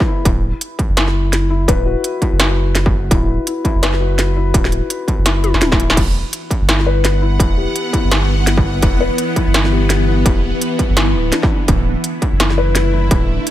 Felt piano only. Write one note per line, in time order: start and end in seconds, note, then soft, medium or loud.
0.00 0.07 E4 medium
0.00 0.27 G4 medium
0.00 0.27 B4 loud
0.07 0.24 E4 loud
0.97 1.14 E4 medium
1.32 1.49 E4 medium
1.50 1.67 E4 loud
1.68 1.80 B4 loud
1.86 2.20 F#4 medium
2.22 2.92 E4 medium
3.11 3.28 E4 medium
3.47 3.63 E4 medium
3.65 3.81 E4 loud
3.82 3.94 B4 loud
4.00 4.35 F#4 medium
4.36 5.06 E4 medium
5.26 5.43 E4 medium
5.61 5.77 E4 medium
5.79 5.95 E4 loud
6.68 6.85 E4 medium
6.86 6.98 B4 loud
7.04 7.20 E4 medium
7.22 7.56 E4 medium
7.57 7.92 G4 medium
7.93 8.63 E4 medium
8.82 9.00 E4 medium
9.00 9.12 B4 loud
9.19 9.35 E4 medium
9.36 9.71 E4 loud
9.72 10.06 G4 medium
10.08 10.78 E4 medium
10.97 11.14 E4 medium
11.33 11.44 D4 medium
11.50 11.62 D4 medium
12.40 12.57 E4 medium
12.58 12.69 B4 loud
12.76 12.92 E4 medium
12.93 13.28 E4 loud